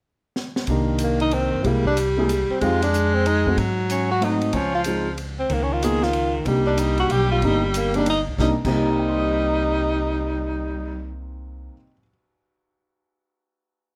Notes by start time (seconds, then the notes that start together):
0.36 snare
0.56 snare
0.67 C2 D#3 A#3 D4 D#4 G4, kick, ride
0.98 hi-hat pedal, ride
1.03 A#3
1.20 D#4, ride
1.31 C4, ride
1.53 G2
1.63 C2 G3 G#3 A#3 E4 G4, kick, ride
1.85 D4, kick
1.97 hi-hat pedal, ride
2.17 G#3 A#3 E4 G#4
2.29 hi-hat pedal, ride
2.50 C4, muted upright bass stroke
2.61 F2 G#3 C4 D#4 F4 G4, kick, ride
2.82 D4, ride
2.94 hi-hat pedal
3.15 C4
3.26 D#4, ride
3.46 A3 C4 D#4 F#4, kick
3.57 G#2 F#3, kick, ride
3.90 C#4, hi-hat pedal, ride
4.11 F#4
4.21 A3 C4 D#4 F#4, ride
4.41 ride
4.53 C#2 F3 C#4, kick, ride
4.75 F4
4.84 G#3 C4 D#4 F4, hi-hat pedal, ride
5.18 ride
5.39 C4
5.49 C#2 D#3 A#3, kick, ride
5.63 C#4
5.73 F4
5.83 A#3 B3 D#4 F4 G#4, hi-hat pedal, ride
6.03 F4, snare
6.13 ride
6.45 C2 G3 A#3 D4 D#4 G4, kick, ride
6.66 D4
6.77 D#4, hi-hat pedal, ride
6.98 F#4, ride
7.09 B1 G4, ride
7.32 F4
7.42 G1 A#3 D4 D#4 G4, kick, ride
7.65 G3
7.74 A#3, hi-hat pedal, ride
7.94 A#3 D4 D#4 G4, ride
8.06 D#4, ride
8.27 C#2
8.38 C2 C3 G3 A#3 D4 D#4, kick, snare
8.42 D#4
8.65 C2 C3 G3 A#3 C4 D#4, kick, crash
8.74 G4
8.82 C5
8.90 D#5
8.99 G5
9.09 C6
9.19 D#6
9.31 G6